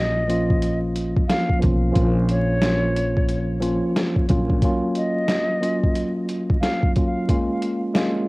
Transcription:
Already playing: A#1 F3 A#3 C#4 F4 D#5
0.28 F3 A#3 C#4 F4, closed hi-hat
0.50 kick
0.62 closed hi-hat
0.96 closed hi-hat
1.17 kick
1.28 F3 A#3 C#4 F4 F5, snare, closed hi-hat
1.50 kick
1.59 F3 A#3 C#4 F4, kick, closed hi-hat
1.63 B1
1.92 F3 A#3 C#4 F4, kick, closed hi-hat
1.96 A#1
2.29 C#5, closed hi-hat
2.61 F3 A#3 C#4 F4, snare, closed hi-hat
2.96 closed hi-hat
3.17 kick
3.29 closed hi-hat
3.60 F3 A#3 C#4 F4, closed hi-hat
3.96 snare, closed hi-hat
4.16 kick
4.28 A#1 F#3 A#3 C#4 F4, kick, closed hi-hat
4.50 kick
4.62 F#3 A#3 C#4 F4, kick, closed hi-hat
4.95 D#5, closed hi-hat
5.28 snare, closed hi-hat
5.60 F#3 A#3 C#4 F4, closed hi-hat
5.84 kick
5.95 closed hi-hat
6.29 closed hi-hat
6.50 kick
6.61 F#3 A#3 C#4 F4 F5, snare, closed hi-hat
6.83 kick
6.96 F#3 A#3 C#4 F4, kick, closed hi-hat
7.28 G#3 A#3 C#4 F4, kick, closed hi-hat
7.62 closed hi-hat
7.94 G#3 A#3 C#4 F4, snare, closed hi-hat

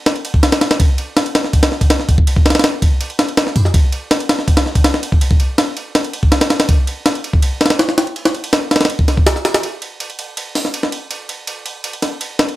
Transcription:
0.06 snare, ride
0.16 ride
0.25 ride
0.34 kick
0.43 snare, ride
0.52 snare, ride
0.61 snare, ride
0.71 snare, ride
0.80 kick, ride
0.98 ride
1.17 snare, ride
1.26 ride
1.35 snare, ride
1.44 snare
1.53 kick, ride
1.63 snare, ride
1.72 snare
1.81 kick, ride
1.90 snare, ride
2.00 snare
2.09 kick, ride
2.18 kick
2.27 ride
2.36 kick
2.46 snare, ride
2.50 snare, ride
2.55 snare, ride
2.59 snare, ride
2.64 snare, ride
2.82 kick, ride
3.01 ride
3.10 ride
3.19 snare, ride
3.28 ride
3.37 snare, ride
3.47 snare
3.56 kick, ride
3.65 snare
3.74 kick, ride
3.92 ride
4.11 snare, ride
4.20 ride
4.29 snare, ride
4.39 snare
4.48 kick, ride
4.57 snare, ride
4.66 snare
4.75 kick, ride
4.84 snare, ride
4.94 snare
5.03 ride
5.12 kick
5.21 ride
5.31 kick
5.40 ride
5.58 snare, ride
5.77 ride
5.95 snare, ride
6.04 ride
6.13 ride
6.23 kick
6.32 snare, ride
6.41 snare, ride
6.50 snare, ride
6.60 snare, ride
6.69 kick, ride
6.87 ride
7.06 snare, ride
7.15 ride
7.24 ride
7.33 kick
7.42 ride
7.61 snare, ride
7.66 snare, ride
7.70 snare, ride
7.79 snare, ride
7.89 snare
7.98 snare, ride
8.07 ride
8.16 ride
8.25 snare, ride
8.35 ride
8.44 ride
8.53 snare, ride
8.71 snare, ride
8.76 snare, ride
8.81 snare, ride
8.85 snare, ride
8.90 ride
8.99 kick
9.08 snare, ride
9.17 kick
9.26 snare, ride
9.36 snare
9.45 snare, ride
9.54 snare, ride
9.63 ride
9.82 ride
10.00 ride
10.10 ride
10.19 ride
10.37 ride
10.55 snare, open hi-hat
10.65 snare
10.74 ride
10.83 snare
10.92 ride
11.11 ride
11.29 ride
11.47 ride
11.66 ride
11.84 ride
11.93 ride
12.02 snare, ride
12.21 ride
12.39 snare, ride
12.49 ride

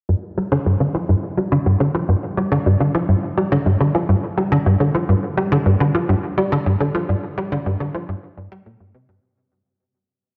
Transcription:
0.09 G2
0.38 G3
0.52 D3
0.66 G2
0.80 D3
0.95 F3
1.09 G2
1.37 G3
1.52 D3
1.66 G2
1.80 D3
1.95 F3
2.09 G2
2.37 G3
2.52 D3
2.66 G2
2.80 D3
2.95 F3
3.09 G2
3.38 G3
3.52 D3
3.66 G2
3.80 D3
3.95 F3
4.09 G2
4.37 G3
4.52 D3
4.66 G2
4.80 D3
4.95 F3
5.09 G2
5.37 G3
5.52 D3
5.66 G2
5.80 D3
5.95 F3
6.09 G2
6.38 G3
6.52 D3
6.66 G2
6.80 D3
6.95 F3
7.09 G2
7.38 G3
7.52 D3
7.66 G2
7.80 D3
7.95 F3
8.09 G2
8.37 G2
8.52 G3
8.66 A#2
8.80 G2
8.94 C3
9.09 G2

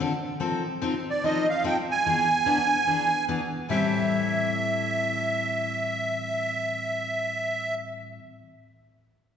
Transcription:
0.00 D3 F3 C4 D4 A4
0.40 F3 C4 D#4 A4
0.81 F3 C4 D#4 A4
1.10 D5
1.24 F3 C4 D#4 A4 D#5
1.50 F5
1.64 F3 C4 D#4 A4 G5
1.91 G#5
2.06 E3 B3 D4 G#4
2.46 E3 B3 D4 G#4
2.87 E3 B3 D4 G#4
3.28 E3 B3 D4 G#4
3.69 A2 E3 G3 C4 E4 A4 E5

